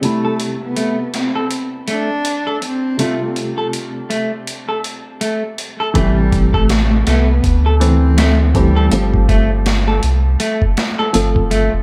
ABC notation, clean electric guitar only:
X:1
M:4/4
L:1/16
Q:"Swing 16ths" 1/4=81
K:Am
V:1 name="Clean electric guitar"
z A z2 A, z2 A z2 A, z2 A z2 | A, z2 A z2 A, z2 A z2 A, z2 A | A, z2 A z2 A, z2 A z2 A, z2 A | z2 A, z2 A z2 A, z2 A z2 A, z |]